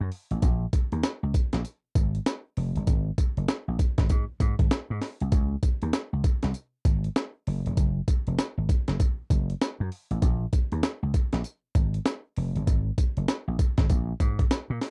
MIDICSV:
0, 0, Header, 1, 3, 480
1, 0, Start_track
1, 0, Key_signature, -5, "minor"
1, 0, Tempo, 612245
1, 333, Time_signature, 4, 2, 24, 8
1, 11682, End_track
2, 0, Start_track
2, 0, Title_t, "Slap bass"
2, 0, Program_c, 0, 36
2, 4, Note_on_c, 0, 42, 100
2, 70, Note_off_c, 0, 42, 0
2, 242, Note_on_c, 0, 33, 101
2, 309, Note_off_c, 0, 33, 0
2, 334, Note_on_c, 0, 34, 118
2, 509, Note_off_c, 0, 34, 0
2, 724, Note_on_c, 0, 39, 90
2, 790, Note_off_c, 0, 39, 0
2, 965, Note_on_c, 0, 37, 92
2, 1030, Note_off_c, 0, 37, 0
2, 1204, Note_on_c, 0, 34, 95
2, 1270, Note_off_c, 0, 34, 0
2, 1533, Note_on_c, 0, 32, 87
2, 1708, Note_off_c, 0, 32, 0
2, 2016, Note_on_c, 0, 29, 99
2, 2123, Note_off_c, 0, 29, 0
2, 2166, Note_on_c, 0, 31, 89
2, 2231, Note_off_c, 0, 31, 0
2, 2254, Note_on_c, 0, 32, 109
2, 2428, Note_off_c, 0, 32, 0
2, 2644, Note_on_c, 0, 30, 90
2, 2710, Note_off_c, 0, 30, 0
2, 2885, Note_on_c, 0, 34, 89
2, 2950, Note_off_c, 0, 34, 0
2, 3123, Note_on_c, 0, 32, 99
2, 3189, Note_off_c, 0, 32, 0
2, 3214, Note_on_c, 0, 44, 122
2, 3322, Note_off_c, 0, 44, 0
2, 3452, Note_on_c, 0, 44, 93
2, 3561, Note_off_c, 0, 44, 0
2, 3601, Note_on_c, 0, 32, 92
2, 3668, Note_off_c, 0, 32, 0
2, 3844, Note_on_c, 0, 44, 97
2, 3910, Note_off_c, 0, 44, 0
2, 4086, Note_on_c, 0, 36, 100
2, 4151, Note_off_c, 0, 36, 0
2, 4174, Note_on_c, 0, 37, 106
2, 4349, Note_off_c, 0, 37, 0
2, 4566, Note_on_c, 0, 39, 90
2, 4631, Note_off_c, 0, 39, 0
2, 4805, Note_on_c, 0, 37, 91
2, 4871, Note_off_c, 0, 37, 0
2, 5047, Note_on_c, 0, 36, 96
2, 5112, Note_off_c, 0, 36, 0
2, 5373, Note_on_c, 0, 32, 92
2, 5548, Note_off_c, 0, 32, 0
2, 5859, Note_on_c, 0, 30, 104
2, 5965, Note_off_c, 0, 30, 0
2, 6007, Note_on_c, 0, 29, 93
2, 6072, Note_off_c, 0, 29, 0
2, 6095, Note_on_c, 0, 30, 106
2, 6269, Note_off_c, 0, 30, 0
2, 6487, Note_on_c, 0, 29, 91
2, 6552, Note_off_c, 0, 29, 0
2, 6723, Note_on_c, 0, 32, 101
2, 6790, Note_off_c, 0, 32, 0
2, 6964, Note_on_c, 0, 30, 101
2, 7030, Note_off_c, 0, 30, 0
2, 7295, Note_on_c, 0, 30, 88
2, 7469, Note_off_c, 0, 30, 0
2, 7685, Note_on_c, 0, 42, 108
2, 7750, Note_off_c, 0, 42, 0
2, 7924, Note_on_c, 0, 33, 101
2, 7990, Note_off_c, 0, 33, 0
2, 8016, Note_on_c, 0, 34, 111
2, 8190, Note_off_c, 0, 34, 0
2, 8406, Note_on_c, 0, 39, 93
2, 8471, Note_off_c, 0, 39, 0
2, 8645, Note_on_c, 0, 37, 92
2, 8711, Note_off_c, 0, 37, 0
2, 8885, Note_on_c, 0, 34, 95
2, 8951, Note_off_c, 0, 34, 0
2, 9215, Note_on_c, 0, 32, 89
2, 9389, Note_off_c, 0, 32, 0
2, 9700, Note_on_c, 0, 29, 100
2, 9806, Note_off_c, 0, 29, 0
2, 9847, Note_on_c, 0, 31, 102
2, 9912, Note_off_c, 0, 31, 0
2, 9938, Note_on_c, 0, 32, 113
2, 10111, Note_off_c, 0, 32, 0
2, 10326, Note_on_c, 0, 30, 90
2, 10391, Note_off_c, 0, 30, 0
2, 10566, Note_on_c, 0, 34, 98
2, 10631, Note_off_c, 0, 34, 0
2, 10805, Note_on_c, 0, 32, 88
2, 10870, Note_off_c, 0, 32, 0
2, 10898, Note_on_c, 0, 34, 118
2, 11071, Note_off_c, 0, 34, 0
2, 11134, Note_on_c, 0, 44, 91
2, 11308, Note_off_c, 0, 44, 0
2, 11525, Note_on_c, 0, 46, 101
2, 11591, Note_off_c, 0, 46, 0
2, 11682, End_track
3, 0, Start_track
3, 0, Title_t, "Drums"
3, 92, Note_on_c, 9, 46, 73
3, 170, Note_off_c, 9, 46, 0
3, 241, Note_on_c, 9, 42, 57
3, 320, Note_off_c, 9, 42, 0
3, 331, Note_on_c, 9, 42, 82
3, 332, Note_on_c, 9, 54, 64
3, 333, Note_on_c, 9, 36, 103
3, 410, Note_off_c, 9, 42, 0
3, 410, Note_off_c, 9, 54, 0
3, 411, Note_off_c, 9, 36, 0
3, 571, Note_on_c, 9, 54, 66
3, 572, Note_on_c, 9, 42, 76
3, 573, Note_on_c, 9, 36, 96
3, 650, Note_off_c, 9, 54, 0
3, 651, Note_off_c, 9, 36, 0
3, 651, Note_off_c, 9, 42, 0
3, 721, Note_on_c, 9, 42, 45
3, 800, Note_off_c, 9, 42, 0
3, 810, Note_on_c, 9, 54, 106
3, 811, Note_on_c, 9, 38, 111
3, 811, Note_on_c, 9, 42, 75
3, 888, Note_off_c, 9, 54, 0
3, 889, Note_off_c, 9, 42, 0
3, 890, Note_off_c, 9, 38, 0
3, 1052, Note_on_c, 9, 42, 83
3, 1053, Note_on_c, 9, 36, 102
3, 1053, Note_on_c, 9, 54, 69
3, 1130, Note_off_c, 9, 42, 0
3, 1131, Note_off_c, 9, 36, 0
3, 1131, Note_off_c, 9, 54, 0
3, 1197, Note_on_c, 9, 42, 67
3, 1199, Note_on_c, 9, 38, 67
3, 1276, Note_off_c, 9, 42, 0
3, 1278, Note_off_c, 9, 38, 0
3, 1291, Note_on_c, 9, 42, 77
3, 1294, Note_on_c, 9, 54, 75
3, 1370, Note_off_c, 9, 42, 0
3, 1372, Note_off_c, 9, 54, 0
3, 1531, Note_on_c, 9, 36, 88
3, 1531, Note_on_c, 9, 54, 69
3, 1534, Note_on_c, 9, 42, 65
3, 1609, Note_off_c, 9, 54, 0
3, 1610, Note_off_c, 9, 36, 0
3, 1612, Note_off_c, 9, 42, 0
3, 1684, Note_on_c, 9, 42, 55
3, 1762, Note_off_c, 9, 42, 0
3, 1773, Note_on_c, 9, 42, 77
3, 1774, Note_on_c, 9, 38, 127
3, 1775, Note_on_c, 9, 54, 96
3, 1851, Note_off_c, 9, 42, 0
3, 1852, Note_off_c, 9, 38, 0
3, 1854, Note_off_c, 9, 54, 0
3, 2014, Note_on_c, 9, 46, 73
3, 2092, Note_off_c, 9, 46, 0
3, 2161, Note_on_c, 9, 42, 55
3, 2239, Note_off_c, 9, 42, 0
3, 2250, Note_on_c, 9, 42, 85
3, 2251, Note_on_c, 9, 54, 69
3, 2253, Note_on_c, 9, 36, 99
3, 2329, Note_off_c, 9, 42, 0
3, 2329, Note_off_c, 9, 54, 0
3, 2331, Note_off_c, 9, 36, 0
3, 2492, Note_on_c, 9, 54, 61
3, 2493, Note_on_c, 9, 36, 90
3, 2494, Note_on_c, 9, 42, 67
3, 2571, Note_off_c, 9, 36, 0
3, 2571, Note_off_c, 9, 54, 0
3, 2572, Note_off_c, 9, 42, 0
3, 2644, Note_on_c, 9, 42, 44
3, 2722, Note_off_c, 9, 42, 0
3, 2730, Note_on_c, 9, 54, 96
3, 2732, Note_on_c, 9, 38, 111
3, 2732, Note_on_c, 9, 42, 85
3, 2809, Note_off_c, 9, 54, 0
3, 2810, Note_off_c, 9, 38, 0
3, 2810, Note_off_c, 9, 42, 0
3, 2972, Note_on_c, 9, 42, 81
3, 2973, Note_on_c, 9, 36, 98
3, 2973, Note_on_c, 9, 54, 72
3, 3051, Note_off_c, 9, 36, 0
3, 3051, Note_off_c, 9, 42, 0
3, 3051, Note_off_c, 9, 54, 0
3, 3119, Note_on_c, 9, 42, 62
3, 3121, Note_on_c, 9, 36, 96
3, 3121, Note_on_c, 9, 38, 71
3, 3198, Note_off_c, 9, 42, 0
3, 3199, Note_off_c, 9, 36, 0
3, 3199, Note_off_c, 9, 38, 0
3, 3210, Note_on_c, 9, 42, 79
3, 3213, Note_on_c, 9, 36, 111
3, 3213, Note_on_c, 9, 54, 80
3, 3289, Note_off_c, 9, 42, 0
3, 3291, Note_off_c, 9, 54, 0
3, 3292, Note_off_c, 9, 36, 0
3, 3450, Note_on_c, 9, 54, 64
3, 3451, Note_on_c, 9, 36, 89
3, 3453, Note_on_c, 9, 42, 66
3, 3529, Note_off_c, 9, 36, 0
3, 3529, Note_off_c, 9, 54, 0
3, 3531, Note_off_c, 9, 42, 0
3, 3600, Note_on_c, 9, 36, 101
3, 3601, Note_on_c, 9, 42, 54
3, 3678, Note_off_c, 9, 36, 0
3, 3679, Note_off_c, 9, 42, 0
3, 3693, Note_on_c, 9, 42, 72
3, 3694, Note_on_c, 9, 38, 114
3, 3695, Note_on_c, 9, 54, 85
3, 3771, Note_off_c, 9, 42, 0
3, 3772, Note_off_c, 9, 38, 0
3, 3773, Note_off_c, 9, 54, 0
3, 3932, Note_on_c, 9, 38, 66
3, 3933, Note_on_c, 9, 46, 73
3, 4010, Note_off_c, 9, 38, 0
3, 4011, Note_off_c, 9, 46, 0
3, 4080, Note_on_c, 9, 42, 61
3, 4159, Note_off_c, 9, 42, 0
3, 4169, Note_on_c, 9, 42, 80
3, 4170, Note_on_c, 9, 54, 69
3, 4172, Note_on_c, 9, 36, 106
3, 4248, Note_off_c, 9, 42, 0
3, 4248, Note_off_c, 9, 54, 0
3, 4250, Note_off_c, 9, 36, 0
3, 4411, Note_on_c, 9, 54, 65
3, 4412, Note_on_c, 9, 36, 90
3, 4412, Note_on_c, 9, 42, 76
3, 4489, Note_off_c, 9, 54, 0
3, 4490, Note_off_c, 9, 36, 0
3, 4490, Note_off_c, 9, 42, 0
3, 4560, Note_on_c, 9, 42, 48
3, 4638, Note_off_c, 9, 42, 0
3, 4649, Note_on_c, 9, 54, 103
3, 4651, Note_on_c, 9, 38, 116
3, 4651, Note_on_c, 9, 42, 79
3, 4728, Note_off_c, 9, 54, 0
3, 4729, Note_off_c, 9, 38, 0
3, 4729, Note_off_c, 9, 42, 0
3, 4892, Note_on_c, 9, 36, 112
3, 4893, Note_on_c, 9, 42, 81
3, 4893, Note_on_c, 9, 54, 70
3, 4971, Note_off_c, 9, 36, 0
3, 4971, Note_off_c, 9, 42, 0
3, 4972, Note_off_c, 9, 54, 0
3, 5038, Note_on_c, 9, 42, 61
3, 5040, Note_on_c, 9, 38, 66
3, 5116, Note_off_c, 9, 42, 0
3, 5118, Note_off_c, 9, 38, 0
3, 5129, Note_on_c, 9, 42, 79
3, 5131, Note_on_c, 9, 54, 80
3, 5207, Note_off_c, 9, 42, 0
3, 5210, Note_off_c, 9, 54, 0
3, 5370, Note_on_c, 9, 54, 64
3, 5371, Note_on_c, 9, 36, 84
3, 5373, Note_on_c, 9, 42, 70
3, 5449, Note_off_c, 9, 36, 0
3, 5449, Note_off_c, 9, 54, 0
3, 5451, Note_off_c, 9, 42, 0
3, 5522, Note_on_c, 9, 42, 52
3, 5600, Note_off_c, 9, 42, 0
3, 5613, Note_on_c, 9, 42, 77
3, 5614, Note_on_c, 9, 38, 117
3, 5615, Note_on_c, 9, 54, 95
3, 5691, Note_off_c, 9, 42, 0
3, 5692, Note_off_c, 9, 38, 0
3, 5694, Note_off_c, 9, 54, 0
3, 5856, Note_on_c, 9, 46, 77
3, 5935, Note_off_c, 9, 46, 0
3, 6005, Note_on_c, 9, 42, 59
3, 6083, Note_off_c, 9, 42, 0
3, 6093, Note_on_c, 9, 36, 95
3, 6093, Note_on_c, 9, 42, 84
3, 6093, Note_on_c, 9, 54, 68
3, 6171, Note_off_c, 9, 42, 0
3, 6171, Note_off_c, 9, 54, 0
3, 6172, Note_off_c, 9, 36, 0
3, 6332, Note_on_c, 9, 54, 65
3, 6333, Note_on_c, 9, 36, 92
3, 6334, Note_on_c, 9, 42, 76
3, 6411, Note_off_c, 9, 54, 0
3, 6412, Note_off_c, 9, 36, 0
3, 6412, Note_off_c, 9, 42, 0
3, 6482, Note_on_c, 9, 42, 46
3, 6560, Note_off_c, 9, 42, 0
3, 6573, Note_on_c, 9, 54, 105
3, 6574, Note_on_c, 9, 42, 74
3, 6575, Note_on_c, 9, 38, 120
3, 6652, Note_off_c, 9, 54, 0
3, 6653, Note_off_c, 9, 38, 0
3, 6653, Note_off_c, 9, 42, 0
3, 6813, Note_on_c, 9, 36, 108
3, 6815, Note_on_c, 9, 42, 77
3, 6816, Note_on_c, 9, 54, 72
3, 6892, Note_off_c, 9, 36, 0
3, 6894, Note_off_c, 9, 42, 0
3, 6894, Note_off_c, 9, 54, 0
3, 6960, Note_on_c, 9, 42, 60
3, 6962, Note_on_c, 9, 38, 65
3, 7038, Note_off_c, 9, 42, 0
3, 7040, Note_off_c, 9, 38, 0
3, 7054, Note_on_c, 9, 42, 86
3, 7055, Note_on_c, 9, 36, 104
3, 7056, Note_on_c, 9, 54, 75
3, 7132, Note_off_c, 9, 42, 0
3, 7133, Note_off_c, 9, 36, 0
3, 7134, Note_off_c, 9, 54, 0
3, 7293, Note_on_c, 9, 36, 87
3, 7294, Note_on_c, 9, 54, 66
3, 7297, Note_on_c, 9, 42, 67
3, 7371, Note_off_c, 9, 36, 0
3, 7373, Note_off_c, 9, 54, 0
3, 7375, Note_off_c, 9, 42, 0
3, 7446, Note_on_c, 9, 42, 56
3, 7525, Note_off_c, 9, 42, 0
3, 7537, Note_on_c, 9, 42, 73
3, 7538, Note_on_c, 9, 38, 118
3, 7540, Note_on_c, 9, 54, 95
3, 7616, Note_off_c, 9, 42, 0
3, 7617, Note_off_c, 9, 38, 0
3, 7618, Note_off_c, 9, 54, 0
3, 7776, Note_on_c, 9, 46, 70
3, 7855, Note_off_c, 9, 46, 0
3, 7925, Note_on_c, 9, 42, 58
3, 8004, Note_off_c, 9, 42, 0
3, 8013, Note_on_c, 9, 42, 80
3, 8014, Note_on_c, 9, 36, 102
3, 8014, Note_on_c, 9, 54, 63
3, 8092, Note_off_c, 9, 42, 0
3, 8092, Note_off_c, 9, 54, 0
3, 8093, Note_off_c, 9, 36, 0
3, 8252, Note_on_c, 9, 54, 65
3, 8254, Note_on_c, 9, 36, 93
3, 8254, Note_on_c, 9, 42, 74
3, 8331, Note_off_c, 9, 54, 0
3, 8332, Note_off_c, 9, 42, 0
3, 8333, Note_off_c, 9, 36, 0
3, 8402, Note_on_c, 9, 42, 45
3, 8481, Note_off_c, 9, 42, 0
3, 8491, Note_on_c, 9, 54, 98
3, 8492, Note_on_c, 9, 38, 117
3, 8492, Note_on_c, 9, 42, 86
3, 8569, Note_off_c, 9, 54, 0
3, 8570, Note_off_c, 9, 42, 0
3, 8571, Note_off_c, 9, 38, 0
3, 8733, Note_on_c, 9, 42, 82
3, 8734, Note_on_c, 9, 36, 100
3, 8734, Note_on_c, 9, 54, 68
3, 8812, Note_off_c, 9, 36, 0
3, 8812, Note_off_c, 9, 42, 0
3, 8812, Note_off_c, 9, 54, 0
3, 8879, Note_on_c, 9, 42, 63
3, 8881, Note_on_c, 9, 38, 71
3, 8958, Note_off_c, 9, 42, 0
3, 8959, Note_off_c, 9, 38, 0
3, 8971, Note_on_c, 9, 42, 81
3, 8973, Note_on_c, 9, 54, 80
3, 9049, Note_off_c, 9, 42, 0
3, 9052, Note_off_c, 9, 54, 0
3, 9211, Note_on_c, 9, 54, 68
3, 9212, Note_on_c, 9, 36, 83
3, 9214, Note_on_c, 9, 42, 65
3, 9290, Note_off_c, 9, 54, 0
3, 9291, Note_off_c, 9, 36, 0
3, 9292, Note_off_c, 9, 42, 0
3, 9362, Note_on_c, 9, 42, 59
3, 9441, Note_off_c, 9, 42, 0
3, 9451, Note_on_c, 9, 42, 80
3, 9452, Note_on_c, 9, 38, 127
3, 9453, Note_on_c, 9, 54, 97
3, 9529, Note_off_c, 9, 42, 0
3, 9530, Note_off_c, 9, 38, 0
3, 9532, Note_off_c, 9, 54, 0
3, 9694, Note_on_c, 9, 46, 76
3, 9772, Note_off_c, 9, 46, 0
3, 9844, Note_on_c, 9, 42, 54
3, 9922, Note_off_c, 9, 42, 0
3, 9935, Note_on_c, 9, 36, 98
3, 9935, Note_on_c, 9, 42, 92
3, 9936, Note_on_c, 9, 54, 64
3, 10014, Note_off_c, 9, 36, 0
3, 10014, Note_off_c, 9, 42, 0
3, 10014, Note_off_c, 9, 54, 0
3, 10175, Note_on_c, 9, 36, 89
3, 10175, Note_on_c, 9, 54, 67
3, 10176, Note_on_c, 9, 42, 67
3, 10253, Note_off_c, 9, 54, 0
3, 10254, Note_off_c, 9, 36, 0
3, 10254, Note_off_c, 9, 42, 0
3, 10324, Note_on_c, 9, 42, 49
3, 10402, Note_off_c, 9, 42, 0
3, 10413, Note_on_c, 9, 54, 99
3, 10414, Note_on_c, 9, 38, 111
3, 10414, Note_on_c, 9, 42, 86
3, 10491, Note_off_c, 9, 54, 0
3, 10492, Note_off_c, 9, 42, 0
3, 10493, Note_off_c, 9, 38, 0
3, 10655, Note_on_c, 9, 36, 108
3, 10655, Note_on_c, 9, 42, 81
3, 10655, Note_on_c, 9, 54, 72
3, 10733, Note_off_c, 9, 36, 0
3, 10733, Note_off_c, 9, 42, 0
3, 10734, Note_off_c, 9, 54, 0
3, 10800, Note_on_c, 9, 42, 61
3, 10802, Note_on_c, 9, 38, 68
3, 10803, Note_on_c, 9, 36, 99
3, 10878, Note_off_c, 9, 42, 0
3, 10880, Note_off_c, 9, 38, 0
3, 10881, Note_off_c, 9, 36, 0
3, 10894, Note_on_c, 9, 42, 83
3, 10896, Note_on_c, 9, 36, 104
3, 10896, Note_on_c, 9, 54, 75
3, 10972, Note_off_c, 9, 42, 0
3, 10974, Note_off_c, 9, 36, 0
3, 10975, Note_off_c, 9, 54, 0
3, 11133, Note_on_c, 9, 54, 66
3, 11134, Note_on_c, 9, 36, 84
3, 11135, Note_on_c, 9, 42, 70
3, 11211, Note_off_c, 9, 54, 0
3, 11212, Note_off_c, 9, 36, 0
3, 11214, Note_off_c, 9, 42, 0
3, 11282, Note_on_c, 9, 36, 96
3, 11284, Note_on_c, 9, 42, 57
3, 11361, Note_off_c, 9, 36, 0
3, 11362, Note_off_c, 9, 42, 0
3, 11374, Note_on_c, 9, 42, 74
3, 11375, Note_on_c, 9, 38, 127
3, 11377, Note_on_c, 9, 54, 94
3, 11453, Note_off_c, 9, 42, 0
3, 11454, Note_off_c, 9, 38, 0
3, 11455, Note_off_c, 9, 54, 0
3, 11615, Note_on_c, 9, 38, 67
3, 11616, Note_on_c, 9, 46, 75
3, 11682, Note_off_c, 9, 38, 0
3, 11682, Note_off_c, 9, 46, 0
3, 11682, End_track
0, 0, End_of_file